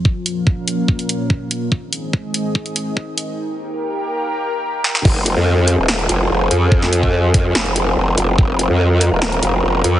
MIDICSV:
0, 0, Header, 1, 4, 480
1, 0, Start_track
1, 0, Key_signature, -4, "minor"
1, 0, Tempo, 416667
1, 59, Time_signature, 4, 2, 24, 8
1, 11515, End_track
2, 0, Start_track
2, 0, Title_t, "Analog synth pad"
2, 0, Program_c, 0, 89
2, 0, Note_on_c, 0, 53, 72
2, 57, Note_on_c, 0, 61, 72
2, 57, Note_on_c, 0, 70, 73
2, 57, Note_on_c, 0, 77, 88
2, 58, Note_on_c, 0, 46, 78
2, 1940, Note_off_c, 0, 53, 0
2, 1959, Note_off_c, 0, 46, 0
2, 1959, Note_off_c, 0, 61, 0
2, 1959, Note_off_c, 0, 70, 0
2, 1959, Note_off_c, 0, 77, 0
2, 1977, Note_on_c, 0, 44, 82
2, 1977, Note_on_c, 0, 68, 75
2, 1977, Note_on_c, 0, 75, 86
2, 1978, Note_on_c, 0, 51, 74
2, 1978, Note_on_c, 0, 60, 74
2, 3879, Note_off_c, 0, 44, 0
2, 3879, Note_off_c, 0, 60, 0
2, 3879, Note_off_c, 0, 68, 0
2, 3879, Note_off_c, 0, 75, 0
2, 3898, Note_on_c, 0, 39, 78
2, 3898, Note_on_c, 0, 67, 73
2, 3899, Note_on_c, 0, 58, 75
2, 3899, Note_on_c, 0, 70, 88
2, 5780, Note_off_c, 0, 51, 0
2, 5799, Note_off_c, 0, 67, 0
2, 5800, Note_off_c, 0, 39, 0
2, 5800, Note_off_c, 0, 58, 0
2, 5800, Note_off_c, 0, 70, 0
2, 5819, Note_on_c, 0, 60, 80
2, 5819, Note_on_c, 0, 65, 74
2, 5819, Note_on_c, 0, 68, 89
2, 9645, Note_off_c, 0, 68, 0
2, 9658, Note_on_c, 0, 70, 89
2, 11515, Note_off_c, 0, 60, 0
2, 11515, Note_off_c, 0, 65, 0
2, 11515, Note_off_c, 0, 70, 0
2, 11515, End_track
3, 0, Start_track
3, 0, Title_t, "Wobble bass"
3, 0, Program_c, 1, 39
3, 5819, Note_on_c, 1, 29, 94
3, 6162, Note_off_c, 1, 29, 0
3, 6181, Note_on_c, 1, 41, 97
3, 6642, Note_off_c, 1, 41, 0
3, 6661, Note_on_c, 1, 27, 100
3, 7000, Note_off_c, 1, 27, 0
3, 7019, Note_on_c, 1, 29, 101
3, 7240, Note_off_c, 1, 29, 0
3, 7258, Note_on_c, 1, 29, 97
3, 7480, Note_off_c, 1, 29, 0
3, 7498, Note_on_c, 1, 41, 98
3, 8440, Note_off_c, 1, 41, 0
3, 8459, Note_on_c, 1, 41, 97
3, 8680, Note_off_c, 1, 41, 0
3, 8699, Note_on_c, 1, 29, 98
3, 9160, Note_off_c, 1, 29, 0
3, 9179, Note_on_c, 1, 29, 96
3, 9400, Note_off_c, 1, 29, 0
3, 9419, Note_on_c, 1, 29, 96
3, 9640, Note_off_c, 1, 29, 0
3, 9658, Note_on_c, 1, 29, 98
3, 10002, Note_off_c, 1, 29, 0
3, 10021, Note_on_c, 1, 41, 100
3, 10481, Note_off_c, 1, 41, 0
3, 10501, Note_on_c, 1, 27, 102
3, 10840, Note_off_c, 1, 27, 0
3, 10859, Note_on_c, 1, 29, 100
3, 11080, Note_off_c, 1, 29, 0
3, 11098, Note_on_c, 1, 29, 96
3, 11320, Note_off_c, 1, 29, 0
3, 11339, Note_on_c, 1, 41, 100
3, 11515, Note_off_c, 1, 41, 0
3, 11515, End_track
4, 0, Start_track
4, 0, Title_t, "Drums"
4, 58, Note_on_c, 9, 36, 94
4, 174, Note_off_c, 9, 36, 0
4, 298, Note_on_c, 9, 42, 80
4, 413, Note_off_c, 9, 42, 0
4, 538, Note_on_c, 9, 36, 92
4, 654, Note_off_c, 9, 36, 0
4, 778, Note_on_c, 9, 42, 78
4, 894, Note_off_c, 9, 42, 0
4, 1018, Note_on_c, 9, 36, 91
4, 1133, Note_off_c, 9, 36, 0
4, 1141, Note_on_c, 9, 42, 36
4, 1256, Note_off_c, 9, 42, 0
4, 1259, Note_on_c, 9, 42, 78
4, 1374, Note_off_c, 9, 42, 0
4, 1498, Note_on_c, 9, 36, 95
4, 1613, Note_off_c, 9, 36, 0
4, 1739, Note_on_c, 9, 42, 79
4, 1854, Note_off_c, 9, 42, 0
4, 1978, Note_on_c, 9, 36, 102
4, 2094, Note_off_c, 9, 36, 0
4, 2219, Note_on_c, 9, 42, 77
4, 2334, Note_off_c, 9, 42, 0
4, 2458, Note_on_c, 9, 36, 102
4, 2574, Note_off_c, 9, 36, 0
4, 2699, Note_on_c, 9, 42, 78
4, 2814, Note_off_c, 9, 42, 0
4, 2938, Note_on_c, 9, 36, 101
4, 3054, Note_off_c, 9, 36, 0
4, 3061, Note_on_c, 9, 42, 36
4, 3176, Note_off_c, 9, 42, 0
4, 3178, Note_on_c, 9, 42, 77
4, 3293, Note_off_c, 9, 42, 0
4, 3418, Note_on_c, 9, 36, 105
4, 3534, Note_off_c, 9, 36, 0
4, 3658, Note_on_c, 9, 42, 77
4, 3774, Note_off_c, 9, 42, 0
4, 5579, Note_on_c, 9, 38, 61
4, 5695, Note_off_c, 9, 38, 0
4, 5702, Note_on_c, 9, 38, 72
4, 5817, Note_off_c, 9, 38, 0
4, 5819, Note_on_c, 9, 36, 117
4, 5820, Note_on_c, 9, 49, 104
4, 5934, Note_off_c, 9, 36, 0
4, 5935, Note_off_c, 9, 49, 0
4, 6059, Note_on_c, 9, 42, 83
4, 6174, Note_off_c, 9, 42, 0
4, 6539, Note_on_c, 9, 42, 85
4, 6654, Note_off_c, 9, 42, 0
4, 6779, Note_on_c, 9, 38, 120
4, 6894, Note_off_c, 9, 38, 0
4, 6902, Note_on_c, 9, 42, 39
4, 7017, Note_off_c, 9, 42, 0
4, 7019, Note_on_c, 9, 42, 85
4, 7134, Note_off_c, 9, 42, 0
4, 7499, Note_on_c, 9, 42, 81
4, 7614, Note_off_c, 9, 42, 0
4, 7739, Note_on_c, 9, 36, 125
4, 7854, Note_off_c, 9, 36, 0
4, 7861, Note_on_c, 9, 38, 38
4, 7977, Note_off_c, 9, 38, 0
4, 7979, Note_on_c, 9, 42, 81
4, 8094, Note_off_c, 9, 42, 0
4, 8101, Note_on_c, 9, 36, 64
4, 8216, Note_off_c, 9, 36, 0
4, 8459, Note_on_c, 9, 36, 115
4, 8459, Note_on_c, 9, 42, 83
4, 8574, Note_off_c, 9, 36, 0
4, 8574, Note_off_c, 9, 42, 0
4, 8698, Note_on_c, 9, 38, 120
4, 8814, Note_off_c, 9, 38, 0
4, 8821, Note_on_c, 9, 42, 38
4, 8936, Note_off_c, 9, 42, 0
4, 8938, Note_on_c, 9, 42, 85
4, 9054, Note_off_c, 9, 42, 0
4, 9419, Note_on_c, 9, 42, 80
4, 9534, Note_off_c, 9, 42, 0
4, 9659, Note_on_c, 9, 36, 127
4, 9774, Note_off_c, 9, 36, 0
4, 9899, Note_on_c, 9, 42, 80
4, 10014, Note_off_c, 9, 42, 0
4, 10379, Note_on_c, 9, 42, 79
4, 10494, Note_off_c, 9, 42, 0
4, 10619, Note_on_c, 9, 38, 123
4, 10734, Note_off_c, 9, 38, 0
4, 10741, Note_on_c, 9, 42, 37
4, 10856, Note_off_c, 9, 42, 0
4, 10859, Note_on_c, 9, 42, 80
4, 10974, Note_off_c, 9, 42, 0
4, 11339, Note_on_c, 9, 42, 78
4, 11454, Note_off_c, 9, 42, 0
4, 11515, End_track
0, 0, End_of_file